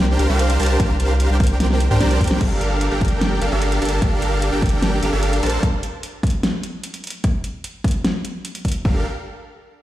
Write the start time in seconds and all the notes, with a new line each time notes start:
Already playing: C2 D4 G4 A#4 C5 G5
0.19 C2 D4 G4 A#4 C5 F5, closed hi-hat
0.30 C2 D4 G4 A#4 C5 F5
0.39 closed hi-hat
0.50 closed hi-hat
0.60 C2 D4 G4 A#4 C5 A5, closed hi-hat, open hi-hat
0.66 closed hi-hat
0.80 C2 D4 G4 A#4 C5 F5, kick, closed hi-hat
1.00 closed hi-hat
1.20 closed hi-hat
1.30 C2 D4 G4 A#4 C5 G5
1.40 kick, closed hi-hat
1.43 closed hi-hat
1.47 closed hi-hat
1.60 snare, closed hi-hat
1.71 snare
1.80 closed hi-hat
1.91 C2 D4 G4 A#4 C5 G5, mid tom
2.01 C2 D4 G4 A#4 C5 D5, snare, closed hi-hat
2.11 closed hi-hat
2.21 C2 D4 G4 A#4 C5 G5, kick, closed hi-hat, mid tom, open hi-hat
2.27 snare, closed hi-hat
2.41 G1 D4 G4 A4 A#4 F5, kick, closed hi-hat, crash
2.61 closed hi-hat
2.81 closed hi-hat
2.91 G1 D4 G4 A4 A#4 G5
3.01 kick, closed hi-hat
3.05 closed hi-hat
3.08 closed hi-hat
3.21 snare, closed hi-hat
3.41 G1 D4 G4 A4 A#4 F5, closed hi-hat
3.52 G1 D4 G4 A4 A#4 F5
3.62 closed hi-hat
3.72 closed hi-hat
3.82 G1 D4 G4 A4 A#4 A5, closed hi-hat
3.85 closed hi-hat
3.89 closed hi-hat
4.02 G1 D4 G4 A4 A#4 F5, kick, closed hi-hat
4.22 closed hi-hat
4.42 closed hi-hat
4.52 G1 D4 G4 A4 A#4 G5
4.62 kick, closed hi-hat
4.66 closed hi-hat
4.69 closed hi-hat
4.82 snare, closed hi-hat
5.02 G1 D4 G4 A4 A#4 F5, closed hi-hat
5.13 G1 D4 G4 A4 A#4 F5
5.23 closed hi-hat
5.33 closed hi-hat
5.43 A#1 D4 A4 A#4 C5 A5, closed hi-hat
5.46 closed hi-hat
5.50 closed hi-hat
5.63 kick, closed hi-hat
5.83 closed hi-hat
6.03 closed hi-hat
6.23 kick, closed hi-hat
6.27 closed hi-hat
6.30 closed hi-hat
6.43 snare, closed hi-hat
6.63 closed hi-hat
6.84 closed hi-hat
6.94 closed hi-hat
7.04 closed hi-hat
7.07 closed hi-hat
7.10 closed hi-hat
7.24 kick, closed hi-hat
7.44 closed hi-hat
7.64 closed hi-hat
7.84 kick, closed hi-hat
7.88 closed hi-hat
7.91 closed hi-hat
8.05 snare, closed hi-hat
8.25 closed hi-hat
8.45 closed hi-hat
8.55 closed hi-hat
8.65 kick, closed hi-hat
8.68 closed hi-hat
8.72 closed hi-hat
8.85 G1 D4 G4 A4 A#4 F5, kick